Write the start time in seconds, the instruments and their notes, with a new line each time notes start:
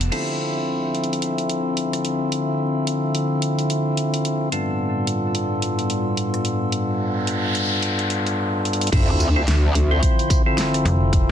Already playing: fm bass F1
0.01 closed hi-hat
0.12 ambient pad D3 F3 C4 E5, tonewheel organ D3 C4 E4 F4 A4, closed hi-hat, crash
0.95 closed hi-hat
1.04 closed hi-hat
1.13 closed hi-hat
1.22 closed hi-hat
1.38 closed hi-hat
1.50 closed hi-hat
1.77 closed hi-hat
1.93 cross-stick, closed hi-hat
2.05 closed hi-hat
2.32 closed hi-hat
2.87 closed hi-hat
3.15 closed hi-hat
3.42 closed hi-hat
3.59 closed hi-hat
3.70 closed hi-hat
3.97 closed hi-hat
4.14 closed hi-hat
4.25 closed hi-hat
4.52 tonewheel organ G2 B3 D4 F4 A4, ambient pad A2 G3 B3 F4, closed hi-hat
5.07 closed hi-hat
5.35 closed hi-hat
5.62 closed hi-hat
5.79 closed hi-hat
5.90 closed hi-hat
6.17 closed hi-hat
6.34 cross-stick, closed hi-hat
6.45 closed hi-hat
6.72 closed hi-hat, noise sweep
7.27 closed hi-hat
7.55 closed hi-hat
7.82 closed hi-hat
7.99 closed hi-hat
8.10 closed hi-hat
8.27 closed hi-hat
8.65 closed hi-hat
8.73 closed hi-hat
8.81 closed hi-hat
8.87 closed hi-hat
8.92 wobble bass D2, ambient pad D3 F3 C4 E5, tonewheel organ C4 E4 F4 A4, kick, closed hi-hat, crash, sub drop
9.20 tambourine
9.36 tonewheel organ C4 E4 F4 A4
9.47 wobble bass D2, snare, closed hi-hat
9.75 closed hi-hat
9.91 tonewheel organ C4 E4 F4 C5
10.03 kick, closed hi-hat
10.19 closed hi-hat
10.30 kick, closed hi-hat, tambourine
10.46 tonewheel organ C4 E4 F4 A4
10.58 snare, closed hi-hat
10.74 cross-stick, closed hi-hat
10.85 fm bass F1, closed hi-hat
11.13 ambient pad D4, kick, closed hi-hat